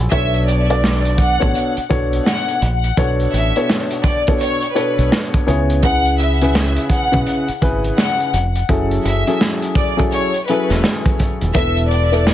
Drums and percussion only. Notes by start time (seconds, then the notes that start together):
0.12 kick, closed hi-hat
0.34 closed hi-hat
0.48 closed hi-hat
0.70 closed hi-hat
0.84 snare
1.05 closed hi-hat
1.18 kick, closed hi-hat
1.41 kick, closed hi-hat
1.55 closed hi-hat
1.77 closed hi-hat
1.91 kick, closed hi-hat
2.13 closed hi-hat
2.26 snare
2.48 closed hi-hat
2.62 closed hi-hat
2.84 closed hi-hat
2.97 kick, closed hi-hat
3.20 closed hi-hat
3.34 closed hi-hat
3.56 closed hi-hat
3.70 snare
3.91 closed hi-hat
4.04 kick, closed hi-hat
4.27 kick, closed hi-hat
4.41 closed hi-hat
4.62 closed hi-hat
4.76 closed hi-hat
4.98 closed hi-hat
5.12 snare
5.34 kick, closed hi-hat
5.48 closed hi-hat
5.70 closed hi-hat
5.83 kick, closed hi-hat
6.05 closed hi-hat
6.19 closed hi-hat
6.41 closed hi-hat
6.55 snare
6.76 closed hi-hat
6.90 kick, closed hi-hat
7.13 kick, closed hi-hat
7.26 closed hi-hat
7.48 closed hi-hat
7.62 kick, closed hi-hat
7.84 closed hi-hat
7.98 snare
8.20 closed hi-hat
8.34 closed hi-hat
8.55 closed hi-hat
8.69 kick, closed hi-hat
8.91 closed hi-hat
9.05 closed hi-hat
9.27 closed hi-hat
9.41 snare
9.62 closed hi-hat
9.75 kick, closed hi-hat
9.98 kick, closed hi-hat
10.12 closed hi-hat
10.34 closed hi-hat
10.48 closed hi-hat
10.70 snare, closed hi-hat
10.84 snare
11.06 kick, closed hi-hat
11.19 kick, closed hi-hat
11.41 closed hi-hat
11.55 kick, closed hi-hat
11.77 closed hi-hat
11.91 closed hi-hat
12.13 closed hi-hat
12.27 snare